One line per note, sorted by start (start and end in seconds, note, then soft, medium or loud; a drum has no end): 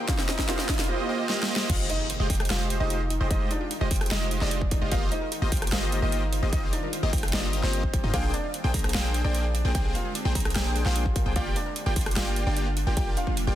0.00 0.85 D#3 medium
0.00 0.87 C4 medium
0.00 0.85 F4 medium
0.00 0.85 G4 medium
0.00 riser medium
0.08 0.12 D#4 medium
0.08 0.19 F4 medium
0.08 0.29 F4 medium
0.08 0.29 D#5 loud
0.08 0.19 F5 loud
0.08 kick loud
0.08 snare medium
0.08 closed hi-hat medium
0.18 0.20 A#4 medium
0.18 snare medium
0.28 0.45 D#4 medium
0.28 0.32 C5 medium
0.28 0.44 D#5 medium
0.28 snare medium
0.28 closed hi-hat medium
0.38 0.42 A#4 medium
0.38 kick medium
0.38 snare medium
0.48 0.87 G1 loud
0.48 0.69 A#3 loud
0.48 0.52 D#4 medium
0.48 0.59 F4 medium
0.48 0.69 F4 medium
0.48 0.69 G4 medium
0.48 0.69 C5 medium
0.48 0.69 D#5 loud
0.48 0.59 F5 loud
0.48 snare medium
0.48 closed hi-hat medium
0.58 0.61 A#4 medium
0.58 snare medium
0.69 0.85 D#4 medium
0.69 0.85 D#5 loud
0.69 kick loud
0.69 snare medium
0.69 closed hi-hat soft
0.74 closed hi-hat medium
0.79 0.82 A#4 medium
0.79 snare medium
0.79 closed hi-hat soft
0.84 closed hi-hat medium
0.89 1.07 A#3 loud
0.89 1.07 F4 medium
0.89 1.07 G4 medium
0.89 1.07 C5 medium
0.89 1.07 D#5 loud
1.09 1.28 A#3 loud
1.09 1.28 F4 loud
1.09 1.28 G4 medium
1.09 1.28 C5 loud
1.09 1.28 D#5 loud
1.29 1.48 A#3 loud
1.29 1.48 F4 loud
1.29 1.48 G4 loud
1.29 1.48 C5 loud
1.29 1.48 D#5 loud
1.29 snare medium
1.43 snare medium
1.49 1.68 A#3 loud
1.49 1.68 F4 medium
1.49 1.68 G4 loud
1.49 1.68 C5 loud
1.49 1.68 D#5 loud
1.56 snare loud
1.69 1.88 F1 loud
1.69 8.10 D#3 medium
1.69 4.88 G#3 medium
1.69 1.75 D#4 loud
1.69 8.10 F4 medium
1.69 1.90 F4 loud
1.69 1.80 F4 medium
1.69 4.88 G4 medium
1.69 1.90 G4 medium
1.69 1.90 D#5 loud
1.69 1.80 F5 loud
1.69 kick loud
1.69 closed hi-hat medium
1.69 crash loud
1.69 impact medium
1.79 1.82 F4 medium
1.89 1.93 D#4 medium
1.89 2.06 D#4 medium
1.89 2.06 D#5 medium
1.89 closed hi-hat medium
2.00 2.02 G#4 medium
2.10 2.13 C5 medium
2.10 closed hi-hat medium
2.20 2.28 F1 loud
2.20 2.28 G#3 loud
2.20 2.28 F4 medium
2.20 2.28 G4 medium
2.20 2.23 G#4 medium
2.20 2.28 C5 medium
2.20 2.27 D#5 loud
2.30 2.48 F1 medium
2.30 2.35 D#4 loud
2.30 2.48 G5 medium
2.30 kick loud
2.30 open hi-hat loud
2.35 closed hi-hat medium
2.40 2.42 F4 medium
2.40 cross-stick medium
2.40 closed hi-hat medium
2.45 closed hi-hat medium
2.50 2.78 F1 loud
2.50 2.78 G#3 medium
2.50 2.54 D#4 medium
2.50 2.66 F4 medium
2.50 2.78 F4 medium
2.50 2.78 G4 medium
2.50 2.78 C5 medium
2.50 2.78 D#5 loud
2.50 2.66 F5 medium
2.50 snare loud
2.50 closed hi-hat medium
2.60 2.62 G#4 medium
2.70 2.74 C5 medium
2.70 closed hi-hat medium
2.80 3.19 F1 loud
2.80 3.01 G#3 medium
2.80 3.23 D#4 medium
2.80 3.01 F4 medium
2.80 3.01 G4 medium
2.80 2.84 G#4 medium
2.80 3.01 C5 medium
2.80 3.22 D#5 medium
2.80 3.01 D#5 loud
2.80 3.01 D#5 medium
2.90 2.96 D#4 loud
2.90 closed hi-hat medium
3.00 3.02 F4 medium
3.10 3.14 D#4 medium
3.10 closed hi-hat medium
3.20 3.29 F1 loud
3.20 3.28 G#3 medium
3.20 3.28 F4 medium
3.20 3.28 G4 medium
3.20 3.23 G#4 medium
3.20 3.28 C5 medium
3.20 3.28 D#5 medium
3.30 3.49 F1 loud
3.30 3.51 G#3 loud
3.30 3.41 D#4 medium
3.30 3.51 F4 medium
3.30 3.51 G4 loud
3.30 3.34 C5 medium
3.30 3.51 C5 medium
3.30 3.51 D#5 loud
3.30 3.41 D#5 loud
3.30 3.51 D#5 loud
3.30 kick loud
3.30 closed hi-hat medium
3.41 3.44 G#4 medium
3.51 3.67 D4 medium
3.51 3.56 D#4 loud
3.51 3.67 D5 medium
3.51 closed hi-hat medium
3.61 3.63 F4 medium
3.71 3.74 D#4 medium
3.71 closed hi-hat medium
3.81 3.89 F1 loud
3.81 3.89 G#3 loud
3.81 3.89 F4 medium
3.81 3.89 G4 medium
3.81 3.83 G#4 medium
3.81 3.89 C5 medium
3.81 3.89 D#5 loud
3.91 4.09 F1 loud
3.91 4.09 G#3 medium
3.91 3.94 C5 medium
3.91 4.09 G5 medium
3.91 kick loud
3.91 open hi-hat medium
3.96 closed hi-hat medium
4.01 4.05 G#4 medium
4.01 cross-stick medium
4.01 closed hi-hat medium
4.06 closed hi-hat medium
4.11 4.39 F1 loud
4.11 4.39 G#3 medium
4.11 4.16 D#4 loud
4.11 4.27 D#4 medium
4.11 4.39 F4 medium
4.11 4.39 G4 medium
4.11 4.39 C5 medium
4.11 4.39 D#5 loud
4.11 4.27 D#5 loud
4.11 4.39 D#5 loud
4.11 snare loud
4.11 closed hi-hat medium
4.21 4.23 F4 medium
4.31 4.35 D#4 medium
4.31 closed hi-hat medium
4.41 4.80 F1 loud
4.41 4.62 G#3 medium
4.41 4.84 D4 medium
4.41 4.62 F4 medium
4.41 4.62 G4 medium
4.41 4.43 G#4 medium
4.41 4.62 C5 medium
4.41 4.84 D5 medium
4.41 4.62 D#5 medium
4.41 snare soft
4.51 4.55 C5 medium
4.51 closed hi-hat medium
4.61 4.65 G#4 medium
4.61 kick medium
4.71 4.77 D#4 loud
4.71 kick loud
4.71 closed hi-hat medium
4.82 4.93 F1 loud
4.82 4.89 G#3 medium
4.82 4.84 F4 medium
4.82 4.89 F4 medium
4.82 4.89 G4 medium
4.82 4.89 C5 medium
4.82 4.89 D#5 loud
4.82 4.89 D#5 medium
4.92 5.10 G1 loud
4.92 8.11 G3 medium
4.92 5.12 A#3 loud
4.92 11.32 C4 medium
4.92 4.95 D#4 medium
4.92 5.02 F4 medium
4.92 5.12 F4 medium
4.92 5.12 G4 medium
4.92 5.12 C5 loud
4.92 5.12 D#5 loud
4.92 5.02 F5 loud
4.92 kick loud
4.92 closed hi-hat medium
5.02 5.04 A#4 medium
5.12 5.28 D#4 medium
5.12 5.15 C5 medium
5.12 5.28 D#5 medium
5.12 closed hi-hat medium
5.22 5.25 A#4 medium
5.32 5.37 D#4 loud
5.32 closed hi-hat medium
5.42 5.50 G1 loud
5.42 5.50 A#3 medium
5.42 5.50 F4 medium
5.42 5.44 F4 medium
5.42 5.50 G4 medium
5.42 5.50 C5 medium
5.42 5.50 D#5 loud
5.52 5.70 G1 medium
5.52 5.70 A#3 medium
5.52 5.56 D#4 medium
5.52 5.70 F4 medium
5.52 5.70 G4 medium
5.52 5.70 C5 medium
5.52 5.70 G5 medium
5.52 kick loud
5.52 open hi-hat medium
5.57 closed hi-hat medium
5.62 5.64 A#4 medium
5.62 cross-stick medium
5.62 closed hi-hat soft
5.67 closed hi-hat medium
5.72 6.00 G1 loud
5.72 6.00 A#3 medium
5.72 6.00 F4 medium
5.72 5.88 F4 medium
5.72 6.00 G4 medium
5.72 6.00 C5 medium
5.72 5.76 C5 medium
5.72 6.00 D#5 loud
5.72 5.88 F5 loud
5.72 snare loud
5.72 closed hi-hat medium
5.82 5.86 A#4 medium
5.92 5.98 D#4 loud
5.92 closed hi-hat medium
6.02 6.41 G1 loud
6.02 6.23 A#3 medium
6.02 6.45 D#4 medium
6.02 6.23 F4 medium
6.02 6.05 F4 medium
6.02 6.23 G4 medium
6.02 6.23 C5 medium
6.02 6.23 D#5 loud
6.02 6.45 D#5 medium
6.02 6.23 D#5 loud
6.12 6.16 D#4 medium
6.12 closed hi-hat medium
6.23 6.25 A#4 medium
6.33 6.36 C5 medium
6.33 closed hi-hat medium
6.43 6.51 G1 medium
6.43 6.50 A#3 medium
6.43 6.50 F4 medium
6.43 6.50 G4 medium
6.43 6.46 A#4 medium
6.43 6.50 C5 medium
6.43 6.50 D#5 medium
6.53 6.71 G1 medium
6.53 6.73 A#3 loud
6.53 6.63 D#4 medium
6.53 6.58 D#4 loud
6.53 6.73 F4 medium
6.53 6.73 G4 medium
6.53 6.73 C5 medium
6.53 6.63 D#5 loud
6.53 6.73 D#5 loud
6.53 kick loud
6.53 closed hi-hat medium
6.63 6.65 F4 medium
6.73 6.89 D4 medium
6.73 6.76 D#4 medium
6.73 6.89 D5 loud
6.73 closed hi-hat medium
6.83 6.85 A#4 medium
6.93 6.97 C5 medium
6.93 closed hi-hat medium
7.03 7.11 G1 loud
7.03 7.11 A#3 loud
7.03 7.11 F4 medium
7.03 7.11 G4 medium
7.03 7.07 A#4 medium
7.03 7.11 C5 medium
7.03 7.11 D#5 loud
7.13 7.31 G1 loud
7.13 7.31 A#3 medium
7.13 7.18 D#4 loud
7.13 7.31 C5 medium
7.13 7.31 G5 medium
7.13 kick loud
7.13 open hi-hat medium
7.18 closed hi-hat medium
7.23 7.25 F4 medium
7.23 cross-stick medium
7.23 closed hi-hat soft
7.28 closed hi-hat medium
7.33 7.61 G1 loud
7.33 7.61 A#3 medium
7.33 7.49 D4 medium
7.33 7.37 D#4 medium
7.33 7.61 F4 medium
7.33 7.61 G4 medium
7.33 7.61 C5 medium
7.33 7.49 D5 medium
7.33 7.61 D#5 loud
7.33 snare loud
7.33 closed hi-hat medium
7.43 7.45 A#4 medium
7.53 7.57 A#4 medium
7.53 closed hi-hat medium
7.63 8.02 G1 loud
7.63 7.84 A#3 medium
7.63 8.06 C4 medium
7.63 7.84 F4 medium
7.63 7.84 G4 medium
7.63 7.65 C5 medium
7.63 8.06 C5 medium
7.63 7.84 C5 medium
7.63 7.84 D#5 medium
7.63 snare soft
7.73 7.76 G4 medium
7.73 closed hi-hat medium
7.83 7.86 C5 medium
7.83 kick medium
7.93 7.97 G4 medium
7.93 kick loud
7.93 closed hi-hat medium
8.04 8.12 G2 medium
8.04 8.11 A#3 medium
8.04 8.07 D#4 loud
8.04 8.11 F4 medium
8.04 8.11 G4 medium
8.04 8.11 C5 medium
8.04 8.11 D#5 medium
8.13 8.32 A#1 loud
8.13 13.55 D3 medium
8.13 11.33 G#3 medium
8.13 8.34 A#3 loud
8.13 8.34 D4 medium
8.13 8.24 F4 medium
8.13 11.33 G4 medium
8.13 8.34 G#4 medium
8.13 8.17 A#4 medium
8.13 8.34 C5 medium
8.13 8.25 F5 loud
8.13 8.34 G5 loud
8.13 kick loud
8.13 closed hi-hat medium
8.13 ride soft
8.24 8.27 G#4 medium
8.34 8.50 D4 medium
8.34 8.39 D4 loud
8.34 8.50 D5 medium
8.34 closed hi-hat medium
8.44 8.46 F4 medium
8.54 8.58 D4 medium
8.54 closed hi-hat medium
8.64 8.72 A#1 loud
8.64 8.72 A#3 loud
8.64 8.72 D4 medium
8.64 8.66 G#4 medium
8.64 8.72 G#4 medium
8.64 8.72 C5 medium
8.64 8.72 G5 loud
8.74 8.92 A#1 loud
8.74 8.92 A#3 medium
8.74 8.92 D4 medium
8.74 8.92 G#4 medium
8.74 8.78 A#4 medium
8.74 8.92 C5 medium
8.74 8.92 A#5 medium
8.74 kick loud
8.74 open hi-hat medium
8.79 closed hi-hat medium
8.84 8.88 G#4 medium
8.84 cross-stick medium
8.84 closed hi-hat soft
8.89 closed hi-hat medium
8.94 9.23 A#1 loud
8.94 9.22 A#3 medium
8.94 9.00 D4 loud
8.94 9.22 D4 medium
8.94 9.10 F4 medium
8.94 9.22 G#4 medium
8.94 9.22 C5 medium
8.94 9.10 F5 loud
8.94 9.22 G5 loud
8.94 snare loud
8.94 closed hi-hat medium
8.94 ride soft
9.04 9.06 F4 medium
9.14 9.18 D4 medium
9.14 closed hi-hat medium
9.24 9.63 A#1 loud
9.24 9.45 A#3 medium
9.24 9.45 D4 medium
9.24 9.67 D4 medium
9.24 9.27 G#4 medium
9.24 9.45 G#4 medium
9.24 9.45 C5 medium
9.24 9.67 D5 medium
9.24 9.45 G5 loud
9.34 9.38 A#4 medium
9.34 closed hi-hat medium
9.44 9.48 G#4 medium
9.55 9.60 D4 loud
9.55 closed hi-hat medium
9.65 9.73 A#1 medium
9.65 9.72 A#3 medium
9.65 9.72 D4 medium
9.65 9.67 F4 medium
9.65 9.72 G#4 medium
9.65 9.72 C5 medium
9.65 9.72 G5 medium
9.75 9.93 A#1 loud
9.75 9.95 A#3 loud
9.75 9.78 D4 medium
9.75 9.95 D4 medium
9.75 9.86 G4 medium
9.75 9.95 G#4 loud
9.75 9.95 C5 loud
9.75 9.85 G5 loud
9.75 9.95 G5 loud
9.75 kick loud
9.75 closed hi-hat medium
9.75 ride soft
9.85 9.87 G#4 medium
9.95 10.11 F4 medium
9.95 9.98 A#4 medium
9.95 10.11 F5 medium
9.95 closed hi-hat medium
10.05 10.09 G#4 medium
10.15 10.20 D4 loud
10.15 closed hi-hat medium
10.25 10.33 A#1 loud
10.25 10.33 A#3 loud
10.25 10.33 D4 medium
10.25 10.27 F4 medium
10.25 10.33 G#4 medium
10.25 10.33 C5 medium
10.25 10.33 G5 loud
10.35 10.53 A#1 medium
10.35 10.53 A#3 medium
10.35 10.39 D4 medium
10.35 10.53 D4 medium
10.35 10.53 G#4 medium
10.35 10.53 A#5 medium
10.35 kick loud
10.35 open hi-hat medium
10.40 closed hi-hat medium
10.45 10.47 G#4 medium
10.45 cross-stick medium
10.45 closed hi-hat soft
10.50 closed hi-hat medium
10.55 10.84 A#1 loud
10.55 10.83 A#3 medium
10.55 10.83 D4 medium
10.55 10.71 G4 medium
10.55 10.83 G#4 medium
10.55 10.59 A#4 medium
10.55 10.83 C5 medium
10.55 10.83 G5 loud
10.55 10.71 G5 medium
10.55 10.83 G5 loud
10.55 snare loud
10.55 closed hi-hat medium
10.55 ride soft
10.65 10.69 G#4 medium
10.75 10.81 D4 loud
10.75 closed hi-hat medium
10.85 11.24 A#1 loud
10.85 11.06 A#3 medium
10.85 11.06 D4 medium
10.85 10.88 F4 medium
10.85 11.28 F4 medium
10.85 11.06 G#4 medium
10.85 11.06 C5 medium
10.85 11.28 F5 medium
10.85 11.06 G5 loud
10.85 snare soft
10.95 10.99 D4 medium
10.95 closed hi-hat medium
11.06 11.08 G#4 medium
11.06 kick medium
11.16 11.19 A#4 medium
11.16 kick loud
11.16 closed hi-hat medium
11.26 11.34 A#1 loud
11.26 11.33 A#3 medium
11.26 11.33 D4 medium
11.26 11.29 G#4 medium
11.26 11.33 G#4 medium
11.26 11.33 C5 medium
11.26 11.33 G5 medium
11.26 11.34 G5 medium
11.36 11.54 G1 loud
11.36 13.55 G3 medium
11.36 11.56 A#3 loud
11.36 13.55 A#3 medium
11.36 11.41 D4 loud
11.36 11.56 F4 medium
11.36 11.47 F4 medium
11.36 13.55 F4 medium
11.36 11.56 G4 medium
11.36 11.56 D5 medium
11.36 11.47 F5 loud
11.36 11.56 G5 loud
11.36 kick loud
11.36 closed hi-hat medium
11.36 ride soft
11.46 11.48 F4 medium
11.56 11.60 D4 medium
11.56 11.72 D4 medium
11.56 11.72 D5 loud
11.56 closed hi-hat medium
11.66 11.68 A#4 medium
11.76 11.80 D5 medium
11.76 closed hi-hat medium
11.86 11.94 G1 loud
11.86 11.94 A#3 loud
11.86 11.94 F4 medium
11.86 11.94 G4 medium
11.86 11.90 A#4 medium
11.86 11.94 D5 medium
11.86 11.94 G5 loud
11.96 12.14 G1 loud
11.96 12.14 A#3 medium
11.96 12.02 D4 loud
11.96 12.14 F4 medium
11.96 12.14 G4 medium
11.96 12.14 D5 medium
11.96 12.14 C6 medium
11.96 kick loud
11.96 open hi-hat medium
12.01 closed hi-hat medium
12.06 12.08 F4 medium
12.06 cross-stick medium
12.06 closed hi-hat soft
12.11 closed hi-hat medium
12.16 12.45 G1 loud
12.16 12.44 A#3 medium
12.16 12.20 D4 medium
12.16 12.33 F4 medium
12.16 12.44 F4 medium
12.16 12.44 G4 medium
12.16 12.44 D5 medium
12.16 12.33 F5 loud
12.16 12.44 G5 loud
12.16 snare loud
12.16 closed hi-hat medium
12.16 ride soft
12.26 12.29 A#4 medium
12.36 12.40 D5 medium
12.36 closed hi-hat medium
12.47 12.85 G1 loud
12.47 12.67 A#3 medium
12.47 12.89 D4 medium
12.47 12.67 F4 medium
12.47 12.67 G4 medium
12.47 12.50 A#4 medium
12.47 12.89 D5 medium
12.47 12.67 D5 medium
12.47 12.67 G5 medium
12.57 12.62 D4 loud
12.57 closed hi-hat medium
12.67 12.69 F4 medium
12.77 12.80 D4 medium
12.77 closed hi-hat medium
12.87 12.95 G1 loud
12.87 12.95 A#3 medium
12.87 12.95 F4 medium
12.87 12.95 G4 medium
12.87 12.89 A#4 medium
12.87 12.95 D5 medium
12.87 12.95 G5 medium
12.87 12.95 G5 loud
12.97 13.15 G1 loud
12.97 13.17 A#3 loud
12.97 13.17 G4 medium
12.97 13.08 G4 medium
12.97 13.17 D5 medium
12.97 13.01 D5 medium
12.97 13.08 G5 loud
12.97 13.17 G5 loud
12.97 kick loud
12.97 closed hi-hat medium
12.97 ride soft
13.07 13.11 A#4 medium
13.17 13.22 D4 loud
13.17 13.33 F4 medium
13.17 13.33 F5 medium
13.17 closed hi-hat medium
13.27 13.29 F4 medium
13.27 kick medium
13.37 13.41 D4 medium
13.37 closed hi-hat medium
13.47 13.55 G1 loud
13.47 13.55 A#3 loud
13.47 13.55 F4 medium
13.47 13.55 G4 medium
13.47 13.49 A#4 medium
13.47 13.55 D5 medium
13.47 13.55 G5 loud